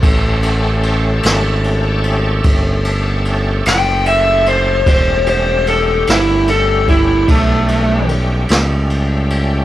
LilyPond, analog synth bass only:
\new Staff \with { instrumentName = "Analog synth bass" } { \clef bass \time 12/8 \key a \mixolydian \tempo 4. = 50 a,,4. gis,,4. g,,4. fis,,4. | e,,4. g,,4. b,,4. cis,4. | }